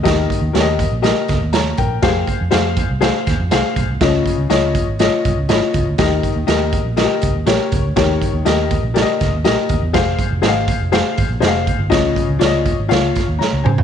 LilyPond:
<<
  \new Staff \with { instrumentName = "Upright piano" } { \time 4/4 \key ees \mixolydian \tempo 4 = 121 << { ees4. r4. <des'' bes''>8 <bes' g''>8~ | <bes' g''>8 r2. r8 | des4. r2 r8 | ees4. r2 r8 |
ees4. r2 r8 | r1 | des4. r4. <des'' bes''>8 <c'' aes''>8 | } \\ { <g' bes' ees''>8 r8 <g' bes' des'' ees''>8 r8 <g' bes' ees''>8 r4. | <g' aes' c'' f''>8 r8 <aes' c'' f''>8 r8 <aes' c'' f''>8 r8 <aes' c'' f''>8 r8 | <f' des'' ees''>8 r8 <f' des'' ees''>8 r8 <f' des'' ees''>8 r8 <fes' f' des'' ees''>8 r8 | <g' bes' ees''>8 r8 <g' bes' ees''>8 r8 <f' g' bes' ees''>8 r8 <g' bes' des''>8 r8 |
<g' bes' des''>8 r8 <g' bes' ees''>8 r8 <g' bes' d'' ees''>8 r8 <g' bes' ees''>8 r8 | <aes' c'' f''>8 r8 <aes' c'' ees'' f''>8 r8 <aes' c'' f''>8 r8 <aes' c'' ees'' f''>8 r8 | <f' des'' ees''>8 r8 <f' des'' d'' ees''>8 r8 <f' des'' f''>8 r4. | } >> }
  \new Staff \with { instrumentName = "Fingered electric bass" } { \clef bass \time 4/4 \key ees \mixolydian ees,8 r16 ees,16 ees,8. bes,,8 r16 des,16 ees,8. bes,,8 | f,8 r16 f,16 f,8. c,8 r16 ees,16 f,16 c,16 r16 ces,16 c,16 | des,8 r16 des,16 des,8. aes,,8 r16 c,16 des,16 aes,,16 r16 des,16 d,16 | ees,8 r16 ees,16 ees,8. bes,,8 r16 des,16 ees,16 bes,,16 r16 des,16 d,16 |
ees,8 r16 ees,16 ees,8. bes,,8 r16 des,16 ees,16 bes,,16 r16 ees,16 fes,16 | f,,8 r16 f,,16 aes,,8. f,,8 r16 aes,,16 bes,,16 f,,8. g,,16 | des,8 r16 des,16 des,8. aes,,16 des,8 r16 ees,16 r16 des,16 des8 | }
  \new DrumStaff \with { instrumentName = "Drums" } \drummode { \time 4/4 <hh bd sn>8 <hh bd>8 <hh sn>8 <hh bd>8 <hh sn>8 <hh bd sn>8 <hh sn>8 <hh bd>8 | <hh bd sn>8 <hh bd>8 <hh sn>8 <hh bd>8 <hh sn>8 <hh bd sn>8 <hh sn>8 <hh bd>8 | <hh bd sn>8 <hh bd>8 <hh sn>8 <hh bd>8 <hh sn>8 <hh bd>8 <hh sn>8 <hh bd>8 | <hh bd sn>8 <hh bd>8 <hh sn>8 <hh bd>8 <hh sn>8 <hh bd>8 <hh sn>8 <hh bd>8 |
<hh bd sn>8 <hh bd>8 <hh sn>8 <hh bd>8 <hh sn>8 <hh bd sn>8 <hh sn>8 <hh bd>8 | <hh bd sn>8 <hh bd>8 <hh sn>8 <hh bd>8 <hh sn>8 <hh bd>8 <hh sn>8 <hh bd>8 | <hh bd sn>8 <hh bd>8 <hh sn>8 <hh bd>8 <hh sn>8 <hh bd sn>8 sn8 toml16 tomfh16 | }
>>